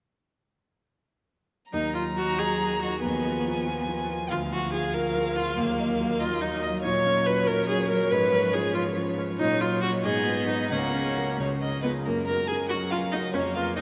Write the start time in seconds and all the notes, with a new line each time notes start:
1.71 D#2 F#3 D#4 A#5
1.94 D#4 F4
2.16 F#3 F#4
2.38 D#4 G#4
2.60 F#3
2.82 D#4 F#4
3.02 D#2 F3 B3 G#5
3.26 F4
3.47 F3
3.67 F4
3.89 F3
4.10 F4
4.30 D2 F4 F5
4.52 F4 F#4
4.73 F3 G#4
4.94 F4 A#4
5.16 F3
5.36 F4
5.57 D#2 F#3 A#3
5.80 D#4
6.01 F#3
6.20 D#4 F4 D#5
6.41 F#3 D#4
6.63 D#4 D#5
6.84 A#2 C#5
7.06 C#4
7.26 F#3 B4
7.47 C#4 A#4
7.68 F#3 G#4
7.90 C#4 A#4
8.10 G#2 F3 B4
8.32 C#4
8.53 F3 G#4
8.75 C#4 F4
8.97 F3
9.18 C#4
9.39 A#2 F#3 D#4 C#5
9.60 F#3 F4
9.82 C#4 F#4 C#5
10.04 G#2 B3 G#4 D#5
10.27 B3
10.48 D#4 B4
10.71 C#2 A#3 C#4 F#5
10.94 C#4
11.18 F#4 A#4
11.38 C#2 G#3 C#5
11.62 C#4 D#5
11.82 B3 F4 G#4 B4
12.05 F#2 A#3 A#4
12.27 F#4 A#4 A#5
12.47 C#4 G#4 G#5
12.51 F#4 A#4
12.69 F#3 C#4 F#4 F#5
12.73 A#4
12.91 F4 F#4 A#4 F5
13.12 C#4 D#4 F#4 A#4 D#5
13.33 F2 A#3 C#4 C#5
13.55 F4 G#4 B4 F5
13.76 D#4 D#5